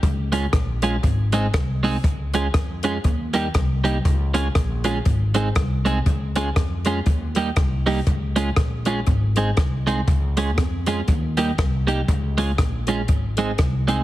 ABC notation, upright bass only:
X:1
M:4/4
L:1/8
Q:"Swing" 1/4=120
K:Dblyd
V:1 name="Upright bass" clef=bass
D,,2 B,,,2 A,,,2 C,,2 | D,,2 F,,2 E,,2 C,,2 | D,,2 B,,,2 A,,,2 C,,2 | D,,2 F,,2 E,,2 C,,2 |
D,,2 B,,,2 A,,,2 C,,2 | D,,2 F,,2 E,,2 C,,2 | D,,2 B,,,2 A,,,2 C,,2 |]